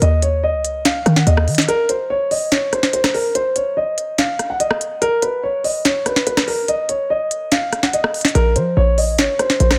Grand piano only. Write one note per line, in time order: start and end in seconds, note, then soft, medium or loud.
0.02 0.21 D#5 medium
0.23 0.42 C#5 medium
0.43 0.83 D#5 medium
0.85 1.15 F5 medium
1.16 1.26 F#5 medium
1.27 1.66 D#5 medium
1.68 1.88 A#4 loud
1.89 2.09 C5 medium
2.10 2.30 C#5 loud
2.31 2.51 D#5 medium
2.52 2.71 C#5 medium
2.73 2.92 C5 medium
2.93 3.13 C5 medium
3.14 3.34 A#4 medium
3.35 3.55 C5 medium
3.56 3.76 C#5 medium
3.77 4.16 D#5 medium
4.18 4.48 F5 medium
4.50 4.60 F#5 medium
4.60 4.99 D#5 medium
5.02 5.21 A#4 loud
5.22 5.42 B4 medium
5.43 5.63 C#5 medium
5.64 5.84 D#5 medium
5.85 6.05 C#5 medium
6.06 6.25 B4 medium
6.27 6.46 B4 medium
6.48 6.67 A#4 medium
6.68 6.88 D#5 medium
6.89 7.09 C#5 medium
7.10 7.49 D#5 medium
7.52 7.81 F5 medium
7.83 7.93 F#5 medium
7.93 8.33 D#5 medium
8.35 8.55 A#4 loud
8.56 8.76 C5 medium
8.77 8.96 C#5 loud
8.98 9.17 D#5 medium
9.18 9.38 C#5 medium
9.39 9.58 C5 medium
9.60 9.79 C5 medium